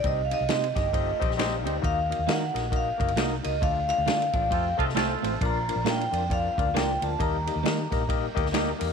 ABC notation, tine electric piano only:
X:1
M:4/4
L:1/8
Q:"Swing" 1/4=134
K:Eblyd
V:1 name="Tine electric piano"
[CEGce] [CEGce] [CEGce] [CEGce] [CEGce] [CEGce] [CEGce] [CEGce] | [B,E_GBe] [B,EGBe] [B,EGBe] [B,EGBe] [B,EGBe] [B,EGBe] [B,EGBe] [B,EGBe] | [A,DFAd] [A,DFAd] [A,DFAd] [A,DFAd] [A,CFAc] [A,CFAe] [A,CFAc] [A,CFAc] | [B,DFBd] [B,DFBd] [B,DFBd] [B,DFBd] [B,DFBd] [B,DFBd] [B,DFBd] [B,DFBd] |
[B,EGBe] [B,EGBe] [B,EGBe] [B,EGBe] [B,EGBe] [B,EGBe] [B,EGBe] [B,EGBe] |]
V:2 name="Tine electric piano" clef=bass
C,3 z2 g f2 | E,3 z4 z | D,3 z4 z | B,,3 z4 z |
E,3 z4 z |]